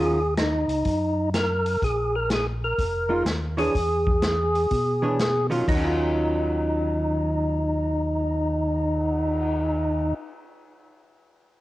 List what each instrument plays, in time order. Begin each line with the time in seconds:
Already playing: tonewheel organ D#2 G#4, hollow-body jazz guitar D#3 F#3 C#4 F4
0.37 tonewheel organ D#4, snare, closed hi-hat
0.68 tonewheel organ C#2, open hi-hat
0.85 tonewheel organ F#2, kick, open hi-hat
1.34 tonewheel organ A#4, snare, closed hi-hat
1.66 open hi-hat
1.82 tonewheel organ A#1 G#4, kick, open hi-hat
2.15 tonewheel organ A#4
2.30 tonewheel organ G#4, snare, closed hi-hat
2.64 tonewheel organ A#4
2.78 tonewheel organ F1, kick, open hi-hat
3.09 hollow-body jazz guitar G#3 D#4 F4
3.25 tonewheel organ D#2, snare, closed hi-hat
3.57 hollow-body jazz guitar E3 D4 G#4 C#5, tonewheel organ G#4, open hi-hat
3.75 tonewheel organ E2, kick, open hi-hat
4.07 kick
4.22 snare, closed hi-hat
4.55 open hi-hat
4.71 tonewheel organ B2, kick, open hi-hat
5.02 hollow-body jazz guitar E3 D4 G#4 C#5
5.19 snare, closed hi-hat
5.50 hollow-body jazz guitar D#3 F#3 C#4 F4, open hi-hat
5.59 hollow-body jazz guitar D#3
5.67 tonewheel organ D#2 D#4, hollow-body jazz guitar F#3, kick, crash
5.77 hollow-body jazz guitar C#4
5.84 hollow-body jazz guitar F4
6.00 cymbal swell